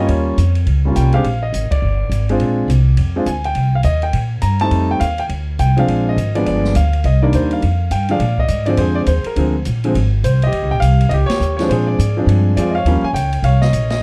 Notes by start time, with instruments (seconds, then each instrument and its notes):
Already playing: grand piano G3
0.00 grand piano A#3 C#4 F4
0.07 upright bass D#2, grand piano C#5, ride
0.37 upright bass F2, hi-hat pedal, ride
0.55 ride
0.66 upright bass C#2, ride
0.85 grand piano G3 A#3 C#4 F4
0.96 upright bass C2, grand piano G5, hi-hat pedal, ride
1.12 grand piano G#3 C4 D4 G4 F5, ride
1.24 upright bass A#1, ride
1.43 grand piano D#5
1.53 upright bass G#1, hi-hat pedal, ride
1.71 grand piano D5, muted upright bass stroke, kick, ride
1.82 upright bass G1
2.10 upright bass G#1, hi-hat pedal, ride
2.29 grand piano G#3 C4 D4 F4, ride
2.40 upright bass A#1, ride
2.68 upright bass C2, hi-hat pedal, ride
2.97 upright bass F2, ride
3.16 grand piano G#3 C4 D4 F4
3.26 upright bass D2, grand piano G#5, hi-hat pedal, ride
3.44 grand piano G5, ride
3.55 upright bass C2, ride
3.75 grand piano F5
3.83 upright bass D#2, grand piano D#5, hi-hat pedal, ride
4.02 grand piano G5, ride
4.13 upright bass A#2, ride
4.42 upright bass G2, grand piano A#5, hi-hat pedal, ride
4.59 grand piano G3 A3 C4 D#4 A5, ride
4.71 upright bass F2, ride
4.91 grand piano G5
5.00 upright bass D#2, grand piano F5, hi-hat pedal, ride
5.18 grand piano G5, ride
5.29 upright bass D2, ride
5.59 upright bass C2, grand piano G5, hi-hat pedal, ride
5.77 grand piano F3 G#3 C4 D4 F5, ride
5.88 upright bass A#1, ride
6.09 grand piano D#5
6.16 upright bass G#1, hi-hat pedal, ride
6.35 grand piano F3 G#3 B3 D4 D5, ride
6.46 upright bass G1, grand piano D5, ride
6.65 snare
6.75 upright bass D2, grand piano F5, hi-hat pedal, ride
6.93 ride
7.04 upright bass C2, grand piano D#5, ride
7.22 grand piano D#3 G3 A#3 D4 D5
7.33 upright bass D#2, grand piano C5, hi-hat pedal, ride
7.51 grand piano F5, ride
7.62 upright bass F2, ride
7.91 upright bass G2, grand piano G5, hi-hat pedal, ride
8.09 grand piano D3 F3 G#3 D4 D5 F5, ride
8.19 upright bass A#2, ride
8.38 grand piano D#5, kick
8.48 upright bass G#2, hi-hat pedal, ride
8.66 grand piano D3 F3 G#3 C4 D5, ride
8.77 upright bass F2, grand piano G#4 C5, ride
8.95 grand piano D5
9.06 upright bass D#2, grand piano C5, hi-hat pedal, ride
9.24 grand piano A#4, muted upright bass stroke, ride
9.36 upright bass D2, grand piano D3 F3 G#3 C4, ride
9.65 upright bass A#1, hi-hat pedal, ride
9.84 grand piano D3 F3 G#3 C4, ride
9.94 upright bass G#1, ride
10.24 upright bass C2, grand piano C5, hi-hat pedal, ride
10.42 grand piano D#5, ride
10.47 grand piano G4
10.52 upright bass D#2, ride
10.62 upright bass C#2
10.71 upright bass A#1, grand piano G5
10.80 upright bass C2, grand piano F5, hi-hat pedal, ride
11.01 ride
11.09 upright bass C#2, grand piano D#5, ride
11.14 grand piano G4
11.26 grand piano C#5, muted upright bass stroke, snare, ride
11.40 upright bass D#2, hi-hat pedal
11.57 grand piano F3 G#3 C#5, snare, ride
11.61 grand piano C4 D4
11.69 upright bass A#2, grand piano G#4 C5, ride
11.87 grand piano D5
11.99 upright bass G#2, hi-hat pedal, ride
12.17 grand piano F3 G#3 C4 D4
12.26 upright bass G2, ride
12.57 upright bass F2, grand piano F3 G#3 C4 F4 D5, hi-hat pedal, ride
12.71 grand piano D#5 F5
12.77 grand piano C#5
12.85 upright bass D#2, grand piano F3 G3 A#3 C#4, ride
13.03 grand piano G#5, muted upright bass stroke
13.13 upright bass C#2, grand piano G5, hi-hat pedal, ride
13.33 ride
13.42 upright bass C2, grand piano C#5 F5, ride
13.62 grand piano D#5, snare
13.73 upright bass A#1, hi-hat pedal, ride
13.90 grand piano D#5, snare, ride